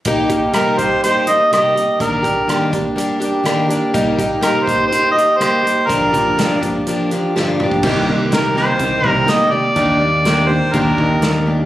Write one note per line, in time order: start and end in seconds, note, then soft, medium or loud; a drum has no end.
0.05 0.30 C3 medium
0.05 0.30 G3 medium
0.05 0.30 A#3 medium
0.05 0.30 D#4 medium
0.05 0.29 G4 medium
0.05 kick medium
0.05 closed hi-hat medium
0.30 0.53 A#3 soft
0.30 0.53 D#4 soft
0.30 0.54 G4 medium
0.30 kick medium
0.30 closed hi-hat medium
0.53 0.78 C3 medium
0.53 0.78 G3 medium
0.53 0.78 A#3 medium
0.53 0.79 D#4 medium
0.53 0.77 G4 medium
0.53 0.79 A#4 medium
0.53 cross-stick medium
0.53 closed hi-hat medium
0.78 1.03 A#3 soft
0.78 1.03 D#4 soft
0.78 1.03 G4 soft
0.78 1.02 C5 medium
0.78 kick medium
0.78 closed hi-hat medium
1.03 1.27 G3 soft
1.03 1.28 A#3 soft
1.03 1.27 D#4 medium
1.03 1.27 G4 medium
1.03 1.30 C5 medium
1.03 closed hi-hat medium
1.27 1.52 A#3 soft
1.27 1.52 D#4 soft
1.27 1.52 G4 soft
1.27 1.52 D#5 medium
1.27 closed hi-hat soft
1.52 1.76 C3 medium
1.52 1.76 G3 medium
1.52 1.76 A#3 medium
1.52 1.75 D#4 medium
1.52 1.74 G4 medium
1.52 1.98 D#5 medium
1.52 cross-stick medium
1.52 closed hi-hat medium
1.75 1.99 A#3 soft
1.75 2.00 D#4 soft
1.75 2.00 G4 soft
1.75 closed hi-hat medium
1.99 2.24 D#3 medium
1.99 2.24 G3 medium
1.99 2.24 A#3 medium
1.99 2.23 D4 medium
1.99 2.22 G4 medium
1.99 2.69 A#4 medium
1.99 kick medium
1.99 closed hi-hat medium
2.23 2.47 A#3 soft
2.23 2.48 D4 soft
2.23 2.48 G4 soft
2.23 kick medium
2.23 closed hi-hat soft
2.47 2.72 D#3 medium
2.47 2.73 G3 medium
2.47 2.73 A#3 medium
2.47 2.71 D4 medium
2.47 2.70 G4 medium
2.47 cross-stick medium
2.47 closed hi-hat medium
2.72 2.95 A#3 soft
2.72 2.96 D4 soft
2.72 2.97 G4 soft
2.72 kick medium
2.72 closed hi-hat soft
2.96 3.21 G3 medium
2.96 3.21 A#3 medium
2.96 3.20 D4 medium
2.96 3.19 G4 medium
2.96 closed hi-hat medium
3.20 3.44 A#3 soft
3.20 3.44 D4 soft
3.20 3.44 G4 soft
3.20 closed hi-hat soft
3.44 3.69 D#3 medium
3.44 3.69 G3 medium
3.44 3.70 A#3 medium
3.44 3.69 D4 medium
3.44 3.67 G4 medium
3.44 cross-stick medium
3.44 closed hi-hat medium
3.68 3.93 A#3 soft
3.68 3.94 D4 medium
3.68 3.94 G4 soft
3.68 closed hi-hat soft
3.94 4.18 C3 medium
3.94 4.19 G3 medium
3.94 4.19 A#3 medium
3.94 4.18 D#4 medium
3.94 4.18 G4 medium
3.94 kick loud
3.94 closed hi-hat medium
4.19 4.41 A#3 soft
4.19 4.42 D#4 soft
4.19 4.42 G4 soft
4.19 kick medium
4.19 closed hi-hat soft
4.41 4.67 C3 medium
4.41 4.67 G3 medium
4.41 4.67 A#3 medium
4.41 4.66 D#4 medium
4.41 4.65 G4 medium
4.41 4.65 A#4 medium
4.41 cross-stick medium
4.41 closed hi-hat medium
4.63 4.91 G4 soft
4.63 4.87 C5 medium
4.67 4.91 A#3 soft
4.67 4.91 D#4 soft
4.67 kick medium
4.67 closed hi-hat medium
4.87 5.16 G3 soft
4.87 5.11 C5 medium
4.92 5.16 A#3 soft
4.92 5.16 D#4 medium
4.92 5.14 G4 medium
4.92 closed hi-hat medium
5.11 5.38 D#5 medium
5.16 5.39 A#3 soft
5.16 5.39 D#4 soft
5.16 5.40 G4 soft
5.16 closed hi-hat medium
5.37 5.64 C3 medium
5.37 5.65 G3 medium
5.37 5.64 A#3 medium
5.37 5.63 D#4 medium
5.37 5.89 C5 medium
5.37 closed hi-hat medium
5.41 5.62 G4 medium
5.41 cross-stick loud
5.63 5.87 A#3 soft
5.63 5.88 D#4 soft
5.63 5.87 G4 soft
5.67 closed hi-hat medium
5.87 6.12 G2 medium
5.87 6.12 D3 medium
5.87 6.13 F3 medium
5.87 6.13 A#3 medium
5.87 6.12 D4 medium
5.87 6.11 G4 medium
5.87 6.61 A#4 medium
5.87 kick medium
5.87 closed hi-hat medium
6.12 6.37 F3 soft
6.12 6.37 A#3 soft
6.12 6.38 D4 soft
6.12 6.37 G4 soft
6.12 kick medium
6.12 closed hi-hat soft
6.37 6.62 G2 medium
6.37 6.62 D3 medium
6.37 6.62 F3 medium
6.37 6.61 A#3 medium
6.37 6.60 D4 medium
6.37 6.60 G4 medium
6.37 snare medium
6.37 closed hi-hat medium
6.61 6.85 F3 soft
6.61 6.87 A#3 soft
6.61 6.86 D4 soft
6.61 6.86 G4 medium
6.61 kick medium
6.61 closed hi-hat medium
6.87 7.11 F3 medium
6.87 7.12 A#3 medium
6.87 7.11 D4 medium
6.87 7.10 G4 medium
6.87 closed hi-hat medium
7.11 7.35 F3 soft
7.11 7.35 A#3 soft
7.11 7.35 D4 medium
7.11 7.35 G4 medium
7.11 closed hi-hat soft
7.36 7.60 G2 medium
7.36 7.60 D3 medium
7.36 7.60 F3 medium
7.36 7.60 A#3 medium
7.36 7.60 D4 medium
7.36 7.60 G4 medium
7.36 snare soft
7.60 7.84 F3 soft
7.60 7.83 A#3 soft
7.60 7.85 D4 soft
7.60 7.84 G4 medium
7.60 mid tom medium
7.71 kick medium
7.83 8.66 C2 medium
7.83 8.06 C3 medium
7.83 8.08 C3 medium
7.83 8.06 D#3 medium
7.83 8.08 G3 medium
7.83 8.07 A#3 medium
7.83 8.08 A#3 medium
7.83 8.07 D#4 medium
7.83 8.06 G4 medium
7.83 kick loud
7.83 crash medium
8.07 8.30 C3 medium
8.07 8.30 D#3 medium
8.07 8.32 A#3 soft
8.07 8.32 D#4 soft
8.07 8.32 G4 medium
8.31 8.54 C3 medium
8.31 8.54 D#3 medium
8.31 8.56 G3 medium
8.31 8.57 A#3 medium
8.31 8.55 D#4 medium
8.31 8.54 G4 medium
8.31 8.56 A#4 medium
8.31 snare medium
8.31 closed hi-hat medium
8.55 8.79 C3 medium
8.55 8.79 D#3 medium
8.55 8.79 A#3 medium
8.55 8.79 A#3 soft
8.55 8.79 D#4 soft
8.55 8.79 G4 medium
8.55 9.08 C5 medium
8.55 snare soft
8.79 9.00 C2 medium
8.79 9.04 C3 medium
8.79 9.02 C3 medium
8.79 9.02 D#3 medium
8.79 9.04 G3 medium
8.79 9.04 A#3 medium
8.79 9.03 D#4 medium
8.79 9.02 G4 medium
8.79 kick loud
8.79 closed hi-hat medium
9.03 9.25 C2 medium
9.03 9.25 C3 medium
9.03 9.26 D#3 medium
9.03 9.27 A#3 soft
9.03 9.28 D#4 soft
9.03 9.28 G4 soft
9.03 kick medium
9.08 9.32 A#4 medium
9.26 9.51 C3 medium
9.26 9.51 D#3 medium
9.26 9.53 G3 medium
9.26 9.51 A#3 medium
9.26 9.52 A#3 medium
9.26 9.51 D#4 medium
9.26 9.50 G4 medium
9.26 snare loud
9.26 closed hi-hat medium
9.30 9.52 D#5 medium
9.51 9.75 C3 medium
9.51 9.75 D#3 medium
9.51 9.75 A#3 soft
9.51 9.76 D#4 soft
9.51 9.76 G4 soft
9.51 10.50 D5 loud
9.75 10.60 D#2 loud
9.75 10.01 D#3 medium
9.75 10.00 D#3 medium
9.75 10.01 G3 medium
9.75 10.00 A#3 medium
9.75 9.99 D4 medium
9.75 10.00 D4 medium
9.75 9.98 G4 medium
9.75 kick medium
9.75 closed hi-hat medium
9.99 10.24 D#3 medium
9.99 10.24 A#3 medium
9.99 10.24 A#3 soft
9.99 10.25 D4 soft
9.99 10.25 G4 soft
10.24 10.49 D#3 medium
10.24 10.50 G3 medium
10.24 10.49 A#3 medium
10.24 10.49 D4 medium
10.24 10.48 G4 medium
10.24 snare medium
10.24 closed hi-hat medium
10.48 10.72 D#3 medium
10.48 10.72 A#3 soft
10.48 10.73 A#3 medium
10.48 10.73 D4 soft
10.48 10.74 G4 medium
10.48 10.75 C5 medium
10.73 10.95 D#2 medium
10.73 10.98 D#3 medium
10.73 10.97 D#3 medium
10.73 10.99 G3 medium
10.73 10.99 A#3 medium
10.73 10.97 A#3 medium
10.73 10.97 D4 medium
10.73 10.98 D4 medium
10.73 10.97 G4 medium
10.73 11.47 A#4 medium
10.73 kick medium
10.73 closed hi-hat medium
10.98 11.61 D#2 medium
10.98 11.20 D#3 medium
10.98 11.21 A#3 medium
10.98 11.20 A#3 soft
10.98 11.21 D4 soft
10.98 11.21 G4 soft
10.98 kick medium
11.20 11.45 D#3 medium
11.20 11.46 G3 medium
11.20 11.47 A#3 medium
11.20 11.45 A#3 medium
11.20 11.46 D4 medium
11.20 11.45 G4 medium
11.20 snare loud
11.20 closed hi-hat medium
11.46 11.66 D#3 medium
11.46 11.66 A#3 medium
11.46 11.66 A#3 soft
11.46 11.66 D4 medium
11.46 11.66 G4 medium